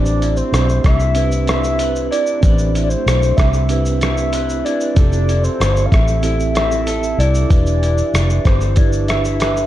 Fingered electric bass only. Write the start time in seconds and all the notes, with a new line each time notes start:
Already playing: A1
0.52 B1
0.84 C2
2.43 A1
3.06 B1
3.38 C2
4.97 F1
5.60 G1
5.92 A1
7.18 C2
7.50 E1
8.14 F1
8.45 G1